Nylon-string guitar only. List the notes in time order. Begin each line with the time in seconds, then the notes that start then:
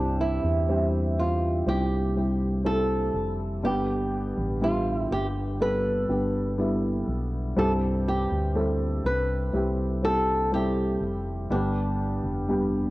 Already playing: D4
0.21 E4
1.20 F4
1.69 G4
2.66 A4
3.65 G4
4.64 F4
4.97 E4
5.12 G4
5.62 B4
7.58 A4
8.08 G4
9.06 B4
10.05 A4
10.54 G4
11.52 D4